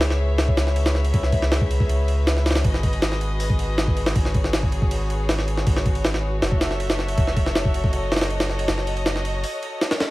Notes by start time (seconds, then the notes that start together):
Already playing: C#2 G#4 B4 C#5 E5
0.01 snare, ride
0.10 snare
0.38 snare, ride
0.48 kick
0.57 snare, ride
0.67 snare
0.76 ride
0.86 snare, ride
0.95 snare
1.05 ride
1.14 C#2, kick, ride
1.23 snare
1.32 kick, ride
1.42 snare
1.52 snare, ride
1.61 kick
1.71 ride
1.80 kick
1.89 ride
2.08 ride
2.27 snare, ride
2.37 snare
2.46 snare, ride
2.51 snare, ride
2.55 snare, ride
2.65 G#1 F#4 G#4 D#5, kick, ride
2.74 snare
2.83 kick, ride
2.93 ride
3.02 snare, ride
3.12 snare
3.21 ride
3.40 open hi-hat
3.50 kick
3.59 ride
3.78 snare, ride
3.88 kick
3.97 ride
4.06 snare, ride
4.15 G#1 C#5, kick, ride
4.25 snare
4.34 kick, ride
4.44 snare
4.53 snare, ride
4.63 kick
4.72 ride
4.82 kick
4.91 ride
5.10 ride
5.29 snare, ride
5.39 snare
5.48 ride
5.57 snare
5.67 G#1, kick, ride
5.76 snare
5.86 kick, ride
5.95 ride
6.05 snare, ride
6.14 snare
6.42 F#1 A4 E5, snare, ride
6.52 kick
6.61 snare, ride
6.71 snare
6.80 ride
6.90 snare, ride
6.99 snare
7.08 ride
7.18 F#1, kick, ride
7.27 snare
7.36 kick, ride
7.46 snare
7.55 snare, ride
7.65 kick
7.74 ride
7.84 kick
7.93 D#5, ride
8.12 snare, ride
8.16 snare, ride
8.21 snare, ride
8.30 ride
8.40 snare, ride
8.50 snare
8.59 ride
8.68 F#1, snare, ride
8.78 snare
8.87 ride
8.97 ride
9.06 snare, ride
9.16 snare
9.25 ride
9.44 open hi-hat
9.63 ride
9.81 snare, ride
9.91 snare, ride
10.00 snare, ride